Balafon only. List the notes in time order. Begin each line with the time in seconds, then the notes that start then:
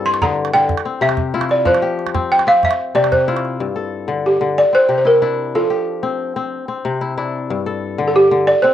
0.06 C6
0.22 A#5
0.54 G5
1.02 E5
1.51 D5
1.67 C5
2.32 G5
2.48 F5
2.65 E5
2.95 D5
3.12 C5
4.26 G4
4.58 D5
4.75 C5
4.98 C5
5.07 A#4
5.55 A4
8.07 A4
8.16 G4
8.47 D5
8.62 C5